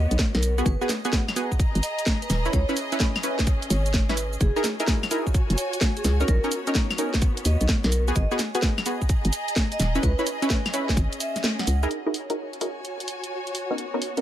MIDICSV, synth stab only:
0, 0, Header, 1, 2, 480
1, 0, Start_track
1, 0, Tempo, 468750
1, 674, Time_signature, 4, 2, 24, 8
1, 14555, End_track
2, 0, Start_track
2, 0, Title_t, "Synth stab"
2, 0, Program_c, 0, 62
2, 594, Note_on_c, 0, 59, 88
2, 594, Note_on_c, 0, 66, 81
2, 594, Note_on_c, 0, 68, 96
2, 752, Note_off_c, 0, 59, 0
2, 752, Note_off_c, 0, 66, 0
2, 752, Note_off_c, 0, 68, 0
2, 833, Note_on_c, 0, 59, 98
2, 833, Note_on_c, 0, 68, 108
2, 834, Note_on_c, 0, 66, 92
2, 908, Note_off_c, 0, 59, 0
2, 908, Note_off_c, 0, 66, 0
2, 908, Note_off_c, 0, 68, 0
2, 1074, Note_on_c, 0, 59, 90
2, 1074, Note_on_c, 0, 66, 84
2, 1074, Note_on_c, 0, 68, 103
2, 1375, Note_off_c, 0, 59, 0
2, 1375, Note_off_c, 0, 66, 0
2, 1375, Note_off_c, 0, 68, 0
2, 1394, Note_on_c, 0, 59, 90
2, 1395, Note_on_c, 0, 66, 80
2, 1395, Note_on_c, 0, 68, 93
2, 1542, Note_off_c, 0, 59, 0
2, 1543, Note_off_c, 0, 66, 0
2, 1543, Note_off_c, 0, 68, 0
2, 2514, Note_on_c, 0, 61, 87
2, 2514, Note_on_c, 0, 64, 81
2, 2514, Note_on_c, 0, 71, 97
2, 2671, Note_off_c, 0, 61, 0
2, 2671, Note_off_c, 0, 64, 0
2, 2671, Note_off_c, 0, 71, 0
2, 2752, Note_on_c, 0, 64, 91
2, 2753, Note_on_c, 0, 61, 99
2, 2753, Note_on_c, 0, 71, 111
2, 2827, Note_off_c, 0, 64, 0
2, 2828, Note_off_c, 0, 61, 0
2, 2828, Note_off_c, 0, 71, 0
2, 2992, Note_on_c, 0, 61, 95
2, 2993, Note_on_c, 0, 64, 84
2, 2993, Note_on_c, 0, 71, 104
2, 3294, Note_off_c, 0, 61, 0
2, 3294, Note_off_c, 0, 64, 0
2, 3294, Note_off_c, 0, 71, 0
2, 3313, Note_on_c, 0, 61, 87
2, 3313, Note_on_c, 0, 64, 77
2, 3313, Note_on_c, 0, 71, 96
2, 3462, Note_off_c, 0, 61, 0
2, 3462, Note_off_c, 0, 64, 0
2, 3462, Note_off_c, 0, 71, 0
2, 4192, Note_on_c, 0, 61, 95
2, 4192, Note_on_c, 0, 64, 89
2, 4192, Note_on_c, 0, 71, 105
2, 4267, Note_off_c, 0, 61, 0
2, 4267, Note_off_c, 0, 64, 0
2, 4267, Note_off_c, 0, 71, 0
2, 4672, Note_on_c, 0, 63, 98
2, 4672, Note_on_c, 0, 68, 89
2, 4673, Note_on_c, 0, 64, 88
2, 4673, Note_on_c, 0, 70, 110
2, 4747, Note_off_c, 0, 63, 0
2, 4747, Note_off_c, 0, 68, 0
2, 4748, Note_off_c, 0, 64, 0
2, 4748, Note_off_c, 0, 70, 0
2, 4913, Note_on_c, 0, 64, 82
2, 4914, Note_on_c, 0, 63, 86
2, 4914, Note_on_c, 0, 68, 84
2, 4914, Note_on_c, 0, 70, 97
2, 5215, Note_off_c, 0, 63, 0
2, 5215, Note_off_c, 0, 64, 0
2, 5215, Note_off_c, 0, 68, 0
2, 5215, Note_off_c, 0, 70, 0
2, 5233, Note_on_c, 0, 64, 79
2, 5233, Note_on_c, 0, 68, 79
2, 5233, Note_on_c, 0, 70, 94
2, 5234, Note_on_c, 0, 63, 86
2, 5382, Note_off_c, 0, 63, 0
2, 5382, Note_off_c, 0, 64, 0
2, 5382, Note_off_c, 0, 68, 0
2, 5382, Note_off_c, 0, 70, 0
2, 6353, Note_on_c, 0, 61, 87
2, 6353, Note_on_c, 0, 70, 102
2, 6354, Note_on_c, 0, 63, 79
2, 6511, Note_off_c, 0, 61, 0
2, 6511, Note_off_c, 0, 63, 0
2, 6511, Note_off_c, 0, 70, 0
2, 6593, Note_on_c, 0, 61, 102
2, 6594, Note_on_c, 0, 63, 90
2, 6594, Note_on_c, 0, 70, 108
2, 6668, Note_off_c, 0, 61, 0
2, 6668, Note_off_c, 0, 63, 0
2, 6668, Note_off_c, 0, 70, 0
2, 6832, Note_on_c, 0, 61, 89
2, 6833, Note_on_c, 0, 63, 82
2, 6833, Note_on_c, 0, 70, 99
2, 7134, Note_off_c, 0, 61, 0
2, 7134, Note_off_c, 0, 63, 0
2, 7134, Note_off_c, 0, 70, 0
2, 7153, Note_on_c, 0, 61, 88
2, 7153, Note_on_c, 0, 63, 76
2, 7154, Note_on_c, 0, 70, 94
2, 7302, Note_off_c, 0, 61, 0
2, 7302, Note_off_c, 0, 63, 0
2, 7302, Note_off_c, 0, 70, 0
2, 8273, Note_on_c, 0, 59, 90
2, 8273, Note_on_c, 0, 66, 81
2, 8273, Note_on_c, 0, 68, 99
2, 8431, Note_off_c, 0, 59, 0
2, 8431, Note_off_c, 0, 66, 0
2, 8431, Note_off_c, 0, 68, 0
2, 8513, Note_on_c, 0, 59, 103
2, 8513, Note_on_c, 0, 66, 90
2, 8513, Note_on_c, 0, 68, 112
2, 8588, Note_off_c, 0, 59, 0
2, 8588, Note_off_c, 0, 66, 0
2, 8588, Note_off_c, 0, 68, 0
2, 8753, Note_on_c, 0, 66, 84
2, 8753, Note_on_c, 0, 68, 100
2, 8754, Note_on_c, 0, 59, 92
2, 9054, Note_off_c, 0, 66, 0
2, 9054, Note_off_c, 0, 68, 0
2, 9055, Note_off_c, 0, 59, 0
2, 9073, Note_on_c, 0, 59, 90
2, 9073, Note_on_c, 0, 66, 79
2, 9073, Note_on_c, 0, 68, 97
2, 9222, Note_off_c, 0, 59, 0
2, 9222, Note_off_c, 0, 66, 0
2, 9222, Note_off_c, 0, 68, 0
2, 10192, Note_on_c, 0, 64, 81
2, 10193, Note_on_c, 0, 61, 88
2, 10193, Note_on_c, 0, 71, 98
2, 10351, Note_off_c, 0, 61, 0
2, 10351, Note_off_c, 0, 64, 0
2, 10351, Note_off_c, 0, 71, 0
2, 10433, Note_on_c, 0, 61, 98
2, 10433, Note_on_c, 0, 64, 90
2, 10433, Note_on_c, 0, 71, 112
2, 10507, Note_off_c, 0, 61, 0
2, 10508, Note_off_c, 0, 64, 0
2, 10508, Note_off_c, 0, 71, 0
2, 10673, Note_on_c, 0, 61, 90
2, 10673, Note_on_c, 0, 64, 85
2, 10673, Note_on_c, 0, 71, 99
2, 10974, Note_off_c, 0, 61, 0
2, 10974, Note_off_c, 0, 64, 0
2, 10974, Note_off_c, 0, 71, 0
2, 10994, Note_on_c, 0, 61, 84
2, 10994, Note_on_c, 0, 64, 80
2, 10994, Note_on_c, 0, 71, 93
2, 11142, Note_off_c, 0, 61, 0
2, 11142, Note_off_c, 0, 64, 0
2, 11142, Note_off_c, 0, 71, 0
2, 12114, Note_on_c, 0, 63, 89
2, 12114, Note_on_c, 0, 64, 80
2, 12114, Note_on_c, 0, 68, 83
2, 12114, Note_on_c, 0, 70, 98
2, 12271, Note_off_c, 0, 64, 0
2, 12271, Note_off_c, 0, 68, 0
2, 12271, Note_off_c, 0, 70, 0
2, 12272, Note_off_c, 0, 63, 0
2, 12353, Note_on_c, 0, 66, 83
2, 12353, Note_on_c, 0, 68, 84
2, 12354, Note_on_c, 0, 63, 94
2, 12354, Note_on_c, 0, 64, 88
2, 12354, Note_on_c, 0, 70, 101
2, 12428, Note_off_c, 0, 63, 0
2, 12428, Note_off_c, 0, 64, 0
2, 12428, Note_off_c, 0, 66, 0
2, 12428, Note_off_c, 0, 68, 0
2, 12428, Note_off_c, 0, 70, 0
2, 12594, Note_on_c, 0, 66, 79
2, 12594, Note_on_c, 0, 68, 80
2, 12595, Note_on_c, 0, 63, 86
2, 12595, Note_on_c, 0, 64, 74
2, 12595, Note_on_c, 0, 70, 98
2, 12895, Note_off_c, 0, 63, 0
2, 12895, Note_off_c, 0, 64, 0
2, 12895, Note_off_c, 0, 66, 0
2, 12895, Note_off_c, 0, 68, 0
2, 12895, Note_off_c, 0, 70, 0
2, 12914, Note_on_c, 0, 63, 83
2, 12914, Note_on_c, 0, 64, 75
2, 12914, Note_on_c, 0, 66, 75
2, 12914, Note_on_c, 0, 70, 93
2, 12915, Note_on_c, 0, 68, 74
2, 13062, Note_off_c, 0, 63, 0
2, 13062, Note_off_c, 0, 64, 0
2, 13062, Note_off_c, 0, 66, 0
2, 13062, Note_off_c, 0, 70, 0
2, 13063, Note_off_c, 0, 68, 0
2, 14035, Note_on_c, 0, 59, 85
2, 14035, Note_on_c, 0, 61, 76
2, 14035, Note_on_c, 0, 63, 78
2, 14035, Note_on_c, 0, 70, 90
2, 14192, Note_off_c, 0, 59, 0
2, 14192, Note_off_c, 0, 61, 0
2, 14192, Note_off_c, 0, 63, 0
2, 14192, Note_off_c, 0, 70, 0
2, 14274, Note_on_c, 0, 59, 95
2, 14274, Note_on_c, 0, 61, 84
2, 14274, Note_on_c, 0, 63, 85
2, 14274, Note_on_c, 0, 70, 103
2, 14348, Note_off_c, 0, 59, 0
2, 14348, Note_off_c, 0, 61, 0
2, 14348, Note_off_c, 0, 63, 0
2, 14348, Note_off_c, 0, 70, 0
2, 14513, Note_on_c, 0, 61, 80
2, 14514, Note_on_c, 0, 59, 82
2, 14514, Note_on_c, 0, 63, 78
2, 14514, Note_on_c, 0, 70, 95
2, 14555, Note_off_c, 0, 59, 0
2, 14555, Note_off_c, 0, 61, 0
2, 14555, Note_off_c, 0, 63, 0
2, 14555, Note_off_c, 0, 70, 0
2, 14555, End_track
0, 0, End_of_file